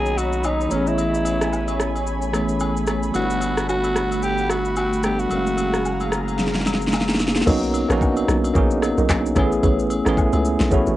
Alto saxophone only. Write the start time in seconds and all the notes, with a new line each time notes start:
Already playing: G#4
0.18 F#4
0.45 D#4
0.72 C#4
0.88 E4
3.15 F#4
3.69 F#4
4.23 G4
4.50 F#4
4.77 F#4
5.04 G4
5.20 F#4